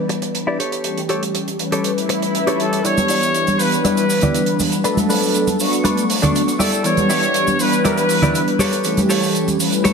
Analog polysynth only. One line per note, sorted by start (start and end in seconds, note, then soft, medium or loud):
0.00 0.58 E3 medium
0.00 0.58 G3 medium
0.00 0.58 B3 medium
0.00 0.59 D4 medium
0.00 0.59 B4 medium
0.84 1.56 E3 medium
0.84 1.57 G3 medium
0.84 1.57 A3 medium
0.84 1.57 C#4 medium
0.84 1.57 G4 medium
1.59 2.81 E3 medium
1.59 2.82 G3 medium
1.59 2.82 A3 medium
1.59 2.82 C#4 medium
1.59 2.82 B4 medium
2.84 3.56 E3 medium
2.84 3.57 G3 medium
2.84 3.57 B3 medium
2.84 3.57 D4 medium
2.84 3.57 G4 medium
3.59 4.81 E3 medium
3.59 4.82 G3 medium
3.59 4.82 B3 medium
3.59 4.82 D4 medium
3.59 4.82 B4 medium
4.84 5.56 F#3 medium
4.84 5.57 A3 medium
4.84 5.57 B3 medium
4.84 5.57 D4 medium
4.84 5.57 A4 medium
5.59 6.58 F#3 medium
5.59 6.58 A3 medium
5.59 6.58 B3 medium
5.59 6.59 D4 medium
5.59 6.59 C#6 medium
6.84 7.56 E3 medium
6.84 7.57 G3 medium
6.84 7.57 B3 medium
6.84 7.57 D4 medium
6.84 7.57 G4 medium
7.59 8.58 E3 medium
7.59 8.58 G3 medium
7.59 8.58 B3 medium
7.59 8.59 D4 medium
7.59 8.59 B4 medium
8.84 9.56 E3 medium
8.84 9.57 G3 medium
8.84 9.57 A3 medium
8.84 9.57 C#4 medium
8.84 9.57 G4 medium
9.59 9.93 E3 medium
9.59 9.93 G3 medium
9.59 9.93 A3 medium
9.59 9.93 C#4 medium
9.59 9.93 B4 medium